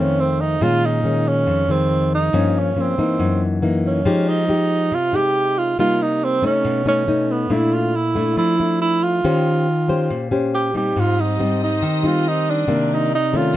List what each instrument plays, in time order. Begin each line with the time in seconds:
Already playing: nylon-string guitar F2 D#3 A3 C4
0.00 tenor saxophone C#4
0.20 tenor saxophone C4
0.41 tenor saxophone D#4
0.61 nylon-string guitar A#2 D#3 G#3 C#4, tenor saxophone F4
0.85 tenor saxophone D#4
1.04 nylon-string guitar D#3 G#3 C#4
1.28 tenor saxophone C#4
1.47 nylon-string guitar F2
1.69 nylon-string guitar D#3 G#3, tenor saxophone C4
2.15 tenor saxophone D#4
2.33 nylon-string guitar G2 F3 A#3 C#4
2.59 tenor saxophone C#4
2.76 nylon-string guitar F3 A#3 C#4
2.81 tenor saxophone C4
2.98 nylon-string guitar E3 A#3 D#4
3.20 nylon-string guitar F#2
3.62 nylon-string guitar E3 A#3 D#4
3.87 tenor saxophone C#4
4.05 nylon-string guitar F3 G#3 D#4 G4
4.29 tenor saxophone D#4
4.48 nylon-string guitar G#3 D#4 G4
4.92 nylon-string guitar C3, tenor saxophone F4
5.13 nylon-string guitar G#3 D#4 G4, tenor saxophone G4
5.58 tenor saxophone F4
5.79 nylon-string guitar C3 G3 A#3 D#4, tenor saxophone F4
6.02 tenor saxophone D#4
6.24 tenor saxophone C4
6.42 nylon-string guitar A3 C#4 D#4, tenor saxophone C#4
6.65 nylon-string guitar B2
6.86 nylon-string guitar A3 C#4 D#4, tenor saxophone C#4
7.07 nylon-string guitar A3 C#4 D#4
7.31 tenor saxophone B3
7.50 nylon-string guitar A#2 A3 D4 E4, tenor saxophone E4
7.74 tenor saxophone F4
7.96 tenor saxophone E4
8.15 nylon-string guitar A3 D4 E4
8.37 nylon-string guitar F3, tenor saxophone E4
8.59 nylon-string guitar A3 D4 E4
8.82 tenor saxophone E4
9.03 tenor saxophone F4
9.24 nylon-string guitar D#3 C#4 G4 C5
9.88 nylon-string guitar C#4 G4 C5
10.10 nylon-string guitar A#2
10.31 nylon-string guitar C#4 G4 C5
10.54 tenor saxophone G4
10.74 nylon-string guitar G3 C4 D#4, tenor saxophone G4
10.95 nylon-string guitar G#2, string section C4 G4 C5 D#5
10.99 tenor saxophone F4
11.20 tenor saxophone D#4
11.39 nylon-string guitar G3 C4 D#4
11.64 tenor saxophone D#4
11.82 nylon-string guitar D#3
12.03 nylon-string guitar G3 C4 D#4, tenor saxophone F4
12.28 tenor saxophone D#4
12.50 tenor saxophone D4
12.68 nylon-string guitar C3 D#3 A#3 D4, string section A#4 D5
12.94 tenor saxophone D#4
13.15 tenor saxophone D#4
13.33 nylon-string guitar D#3 A3 C#4, tenor saxophone F4
13.53 string section F4 A4 D#5